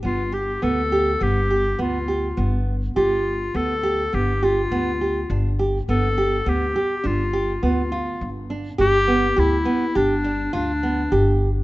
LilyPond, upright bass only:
\new Staff \with { instrumentName = "Upright bass" } { \clef bass \time 5/4 \key g \mixolydian \tempo 4 = 103 g,,4 d,4 g,,4 d,4 g,,4 | g,,4 d,4 g,,4 d,4 g,,4 | g,,4 d,8 r8 g,,4 d,4 g,,4 | g,,4 d,8 r8 g,,4 d,4 g,,4 | }